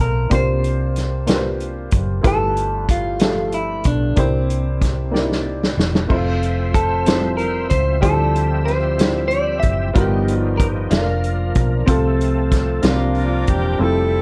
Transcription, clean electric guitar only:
0.01 A#4
0.34 C5
2.27 A4
2.91 F4
3.54 E4
3.87 D4
4.19 C4
6.10 F4
6.74 A4
7.37 A#4
7.70 C5
8.02 A4
8.65 C5
9.28 D5
9.59 E5
9.95 G4
10.41 F4
10.57 A#4
10.91 F4

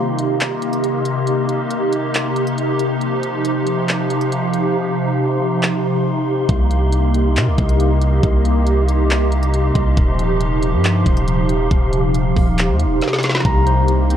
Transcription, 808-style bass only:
6.49 C2
7.36 C3
7.47 C2
7.58 C2
8.23 C2
9.76 C2
9.97 D#1
10.73 G2
11.06 D#1
11.71 D#1
12.36 D#1
12.69 D#2
12.85 D#1
13.45 C2

